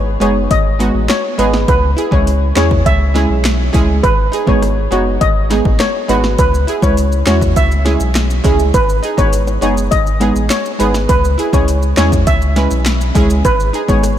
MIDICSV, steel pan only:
0, 0, Header, 1, 2, 480
1, 0, Start_track
1, 0, Key_signature, 4, "minor"
1, 0, Tempo, 588235
1, 1373, Time_signature, 4, 2, 24, 8
1, 11577, End_track
2, 0, Start_track
2, 0, Title_t, "Steel pan"
2, 0, Program_c, 0, 114
2, 179, Note_on_c, 0, 73, 74
2, 273, Note_off_c, 0, 73, 0
2, 416, Note_on_c, 0, 75, 102
2, 753, Note_off_c, 0, 75, 0
2, 892, Note_on_c, 0, 73, 83
2, 989, Note_off_c, 0, 73, 0
2, 1135, Note_on_c, 0, 71, 77
2, 1231, Note_off_c, 0, 71, 0
2, 1375, Note_on_c, 0, 71, 107
2, 1471, Note_off_c, 0, 71, 0
2, 1738, Note_on_c, 0, 73, 77
2, 1833, Note_off_c, 0, 73, 0
2, 2094, Note_on_c, 0, 73, 88
2, 2190, Note_off_c, 0, 73, 0
2, 2334, Note_on_c, 0, 76, 107
2, 2672, Note_off_c, 0, 76, 0
2, 3292, Note_on_c, 0, 71, 118
2, 3389, Note_off_c, 0, 71, 0
2, 3658, Note_on_c, 0, 73, 84
2, 3752, Note_off_c, 0, 73, 0
2, 4015, Note_on_c, 0, 73, 76
2, 4111, Note_off_c, 0, 73, 0
2, 4251, Note_on_c, 0, 75, 99
2, 4591, Note_off_c, 0, 75, 0
2, 4730, Note_on_c, 0, 73, 81
2, 4828, Note_off_c, 0, 73, 0
2, 4973, Note_on_c, 0, 71, 80
2, 5070, Note_off_c, 0, 71, 0
2, 5213, Note_on_c, 0, 71, 105
2, 5309, Note_off_c, 0, 71, 0
2, 5576, Note_on_c, 0, 73, 78
2, 5671, Note_off_c, 0, 73, 0
2, 5936, Note_on_c, 0, 73, 85
2, 6031, Note_off_c, 0, 73, 0
2, 6174, Note_on_c, 0, 76, 103
2, 6512, Note_off_c, 0, 76, 0
2, 7134, Note_on_c, 0, 71, 113
2, 7230, Note_off_c, 0, 71, 0
2, 7494, Note_on_c, 0, 73, 88
2, 7590, Note_off_c, 0, 73, 0
2, 7851, Note_on_c, 0, 73, 77
2, 7948, Note_off_c, 0, 73, 0
2, 8088, Note_on_c, 0, 75, 100
2, 8429, Note_off_c, 0, 75, 0
2, 8570, Note_on_c, 0, 73, 80
2, 8668, Note_off_c, 0, 73, 0
2, 8811, Note_on_c, 0, 71, 77
2, 8909, Note_off_c, 0, 71, 0
2, 9050, Note_on_c, 0, 71, 108
2, 9148, Note_off_c, 0, 71, 0
2, 9417, Note_on_c, 0, 73, 77
2, 9512, Note_off_c, 0, 73, 0
2, 9771, Note_on_c, 0, 73, 87
2, 9868, Note_off_c, 0, 73, 0
2, 10012, Note_on_c, 0, 76, 104
2, 10351, Note_off_c, 0, 76, 0
2, 10975, Note_on_c, 0, 71, 118
2, 11071, Note_off_c, 0, 71, 0
2, 11335, Note_on_c, 0, 73, 87
2, 11431, Note_off_c, 0, 73, 0
2, 11577, End_track
0, 0, End_of_file